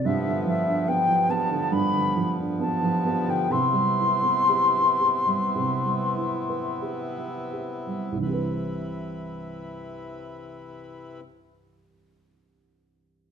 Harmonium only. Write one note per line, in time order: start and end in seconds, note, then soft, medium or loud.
0.05 3.47 G2 medium
0.05 3.47 F3 medium
0.05 8.18 B3 medium
3.51 8.18 C3 medium
3.51 8.18 E4 medium
8.22 11.20 C3 medium
8.22 11.21 E4 medium
8.22 11.21 B4 medium